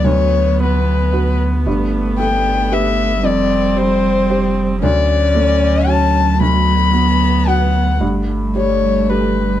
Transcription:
X:1
M:3/4
L:1/8
Q:1/4=113
K:Bm
V:1 name="Violin"
c2 B3 z | z2 g2 e2 | d2 =c3 z | d4 a2 |
b4 f2 | z2 c2 B2 |]
V:2 name="Felt piano"
D,,2 B,2 [FB]2 | G,,2 A,2 [GB]2 | =F,,2 G,2 [G=c]2 | D,,2 A,2 [Fc]2 |
D,,2 B,2 [FB]2 | G,,2 G,2 [GA]2 |]
V:3 name="Viola"
B,6- | B,6 | =C6 | C6 |
B,6 | A,6 |]
V:4 name="Cello" clef=bass
F,6 | A,6 | G,6 | F,6- |
F,6 | G,6 |]
V:5 name="Sub bass" clef=bass
D,,6 | G,,,6 | =F,,,6 | D,,6- |
D,,6 | G,,,6 |]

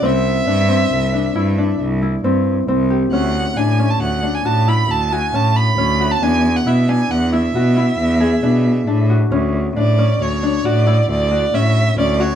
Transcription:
X:1
M:7/4
L:1/16
Q:1/4=136
K:Dlyd
V:1 name="Violin"
e16 z12 | f4 g3 a f3 g a2 b2 a2 g2 a2 b4- b a | g3 f e2 g2 f2 e16 z2 | z4 d4 c4 d4 d4 e4 d2 c2 |]
V:2 name="Harp"
=C4 D2 C4 D2 E2 D4 E2 C4 C2 =G2 | C4 D2 C4 D2 F2 E4 F2 C4 C2 F2 | D4 E2 D4 E2 F2 E4 G2 D4 D2 F2 | C4 D2 C4 D2 F2 E4 F2 C4 C2 F2 |]
V:3 name="Cello" clef=bass
=C,,4 =G,,4 C,,4 G,,4 C,,4 G,,4 C,,4 | D,,4 A,,4 D,,4 A,,4 D,,4 A,,4 D,,4 | E,,4 B,,4 E,,4 B,,4 E,,4 B,,4 A,,4 | D,,4 A,,4 D,,4 A,,4 D,,4 A,,4 D,,4 |]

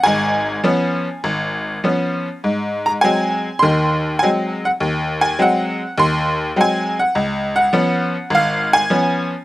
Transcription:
X:1
M:4/4
L:1/8
Q:"Swing" 1/4=102
K:Db
V:1 name="Honky-tonk piano"
a6 z2 | z b a2 c'2 a g | z a g2 c'2 a g | z g3 f a2 z |]
V:2 name="Honky-tonk piano" clef=bass
[A,,,A,,]2 [F,_CD] z A,,,2 [F,CD] z | A,,2 [G,A,C] z [E,,E,]2 [G,A,C] z | E,,2 [G,A,C] z E,,2 [G,A,C] z | D,,2 [F,_CD] z A,,,2 [F,CD] z |]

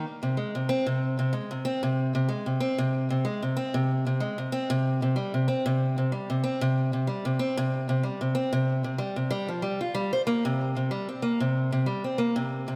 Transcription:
X:1
M:4/4
L:1/16
Q:"Swing 16ths" 1/4=94
K:Ablyd
V:1 name="Steel-string acoustic guitar" clef=bass
z C, A, C, C C,2 C, A, C, C C,2 C, A, C, | C C,2 C, A, C, C C,2 C, A, C, C C,2 C, | G, C, C C,2 C, G, C, C C,2 C, G, C, C C,- | C, C, G, C, C C,2 C, G, C, G, F, G, F G, c |
B, C,2 C, G, C B, C,2 C, G, C B, C,2 C, |]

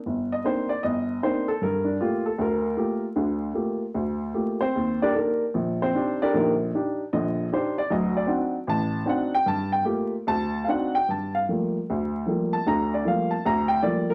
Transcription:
X:1
M:4/4
L:1/8
Q:"Swing" 1/4=153
K:Gm
V:1 name="Grand piano"
z e c d e2 c A | B D F A B3 z | z6 z [Cc]- | [Cc] [DGBd] [B,AB] z2 [Cc]2 [DGBd] |
[B,EGAB] z3 e2 c d | e d z2 a2 ^f g | a g z2 a2 [f^f] g | a f z4 z a |
b d f a b g d B |]
V:2 name="Grand piano"
G,,,2 [B,CDE] z G,,,2 [B,CDE] z | G,,2 [A,B,G] z D,,2 [A,B,FG] z | [D,,D,]2 [A,B,FG] z D,,2 [A,B,FG] z | E,,2 [DEG] z B,,,2 [DEG] z |
[B,,,D,]2 [DEG] z [B,,,D,]2 [DEG] z | [D,,^F,]2 [CDE^F] z A,,,2 [CDEF] z | G,,2 [A,B,FG] z D,,2 [CDE^F] z | G,,2 [F,G,A,B,] z D,,2 [F,G,A,B,] z |
[D,,D,]2 [F,G,A,B,] z D,,2 [F,G,A,B,] z |]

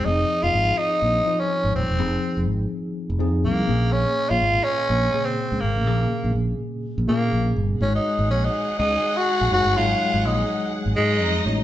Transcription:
X:1
M:4/4
L:1/16
Q:"Swing 16ths" 1/4=124
K:Abmix
V:1 name="Violin section"
z16 | z16 | z16 | z16 |
[Ag]16- | [Ag]8- [Ag]2 [Ee]6 |]
V:2 name="Tenor saxophone"
E3 F3 E4- E D3 C2- | C4 z8 B,4 | D3 F3 D4- D C3 B,2- | B,4 z6 B,4 z2 |
D E3 D E3 E3 G3 G2 | F4 E4 z2 A,4 z2 |]
V:3 name="Tine electric piano"
[F,CEA]6- [F,CEA] z3 [F,EFc]6 | [F,CEA]6- [F,CEA] z3 [F,CEA]4 [B,,B,DA]2- | [B,,B,DA]4- [B,,B,DA] z4 z [B,,D,B,A]6 | [B,,B,DA]6- [B,,B,DA] z3 [B,,B,DA]6 |
[A,EGd]6- [A,EGd] z6 z [A,EGd]2 | [G,A,Ed]6- [G,A,Ed] z6 z [A,EGd]2 |]
V:4 name="Fingered electric bass" clef=bass
F,,,2 z F,,, A,,,2 z2 B,,,2 z3 A,,, E,,, =E,,, | F,,,2 z F,,, A,,,2 z3 F,,, F,,2 C,,2 B,,,2- | B,,,2 z B,,, A,,,2 z2 B,,,2 z3 D,, A,,, =A,,, | B,,,2 z B,,, B,,,2 z3 B,,, B,,2 B,,,2 =G,,,2 |
A,,,2 z A,,, B,,,2 z2 D,,2 z3 B,,, G,,, =G,,, | A,,,2 z A,,, B,,,2 z3 A,,, A,,2 F,,2 =A,,,2 |]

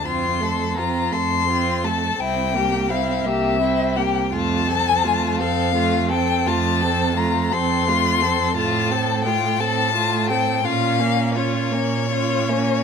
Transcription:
X:1
M:12/8
L:1/8
Q:3/8=56
K:F
V:1 name="Violin"
c'2 b c'2 a g2 f e2 g | a3 f2 g a2 b c'3 | [K:Bblyd] a2 g a2 g f2 _d4 |]
V:2 name="Violin"
F A F A F A E G E G E G | F A F A F A F A F A F A | [K:Bblyd] F A F A F A F _D F D F D |]
V:3 name="Viola"
C A, C A, C A, C B, C B, C B, | A, C A, C A, C A, C A, C A, C | [K:Bblyd] A, C A, C A, C _D B, D B, D B, |]
V:4 name="Cello" clef=bass
F,,3 F,,3 C,,3 C,,3 | F,,3 F,,3 F,,3 F,,3 | [K:Bblyd] A,,3 A,,3 B,,3 B,,3 |]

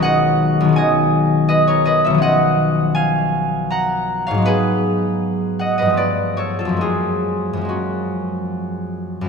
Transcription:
X:1
M:3/4
L:1/16
Q:1/4=80
K:F#
V:1 name="Harp"
[FGBcdf]4 [dg]4 [Bd] [Ac] [Bd] [c=e] | [df]4 [eg]4 [fa]3 [ce] | [GB]6 [df] [Bd] [B=d]2 [=Ac] [=FA] | [EG]4 [CF]8 |]
V:2 name="Harp" clef=bass
[B,,,D,F,G,C]4 [B,,,D,G,C]8 | [B,,,D,E,C]12 | [G,,F,G,B,]8 [=G,,=F,=A,B,]4 | [F,,E,G,A,]4 [F,,E,G,A,]8 |]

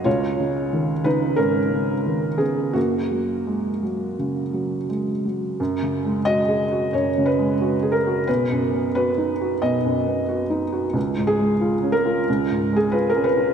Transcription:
X:1
M:4/4
L:1/16
Q:1/4=90
K:F#
V:1 name="Felt piano"
[Ec]6 [DB]2 [CA]6 [B,G]2 | [A,F]12 z4 | z4 d4 c2 B4 A2 | B4 B4 d6 z2 |
z2 G4 A4- A G B A B2 |]
V:2 name="Felt piano" clef=bass
C,,2 C,2 D,2 C,2 G,,2 C,2 D,2 C,2 | F,,2 F,2 G,2 F,2 C,2 F,2 G,2 F,2 | (3F,,2 C,2 G,2 (3F2 G2 F2 (3F,,2 C,2 G,2 (3F2 G2 F2 | (3B,,,2 F,,2 B,2 (3F2 D2 F2 (3B,,,2 F,,2 B,2 (3F2 D2 F2 |
(3C,,2 G,,2 G,2 (3E2 C2 E2 (3C,,2 G,,2 G,2 (3E2 C2 E2 |]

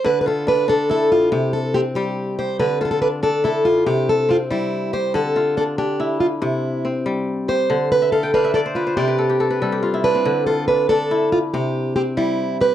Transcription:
X:1
M:12/8
L:1/16
Q:3/8=94
K:Ddor
V:1 name="Steel-string acoustic guitar"
B3/2 B/2 A2 B2 A2 A2 F2 G2 A2 G2 G4 c2 | B2 A/2 A/2 A B2 A2 A2 F2 G2 A2 F2 E4 c2 | A4 A2 G4 F2 E4- E/2 z4 z3/2 c2- | c2 B2 A2 B2 A2 F2 G8 z2 B2- |
B2 A2 B2 A4 F2 G4 G2 E4 B2 |]
V:2 name="Kora"
z2 F2 D4 E6 z2 C6 G2- | G2 F2 D4 E6 z2 C6 G2- | G2 F2 D4 E6 z2 C6 G2- | G2 z e f g f e d c B c d B A G A B A G F E D C- |
C z F2 D4 E6 z2 C6 G2 |]
V:3 name="Kora" clef=bass
D,4 z2 D4 z2 C,4 z2 G,4 z2 | D,4 z2 D4 z2 C,4 z2 G,4 z2 | D,4 z2 D4 z2 C,4 z2 G,4 z2 | D,4 z2 D4 z2 C,4 z2 G,4 z2 |
D,4 z2 D4 z2 C,4 z2 G,4 z2 |]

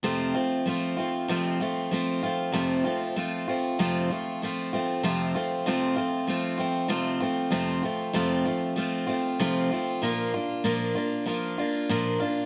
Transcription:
X:1
M:4/4
L:1/8
Q:1/4=96
K:F
V:1 name="Steel-string acoustic guitar"
[F,,C,F,A,CF] [F,A,CF] [F,A,CF] [F,A,CF] [F,,C,F,A,CF] [F,A,CF] [F,A,CF] [F,A,CF] | [F,,C,F,A,CF] [F,A,CF] [F,A,CF] [F,A,CF] [F,,C,F,A,CF] [F,A,CF] [F,A,CF] [F,A,CF] | [F,,C,F,A,CF] [F,A,CF] [F,,C,F,A,CF] [F,A,CF] [F,A,CF] [F,A,CF] [F,,C,F,A,CF] [F,A,CF] | [F,,C,F,A,CF] [F,A,CF] [F,,C,F,A,CF] [F,A,CF] [F,A,CF] [F,A,CF] [F,,C,F,A,CF] [F,A,CF] |
[B,,F,B,DF] [B,DF] [B,,F,B,DF] [B,DF] [F,B,DF] [B,DF] [B,,F,B,DF] [B,DF] |]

